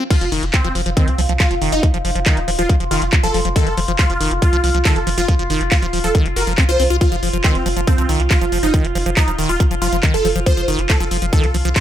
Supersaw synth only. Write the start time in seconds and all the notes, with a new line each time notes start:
0.10 F4
0.54 C4
0.97 C4
1.40 F4
1.72 D#4
2.26 D#4
2.59 F4
2.91 F4
3.23 A4
3.56 A4
3.99 F4
4.42 F4
4.85 A4
5.18 F4
5.72 F4
6.04 A4
6.36 A#4
6.69 C5
7.01 F4
7.44 C4
7.87 C4
8.31 F4
8.63 D#4
9.17 D#4
9.49 F4
9.82 F4
10.14 A4
10.46 C5
10.90 A4
11.33 A4
11.76 C5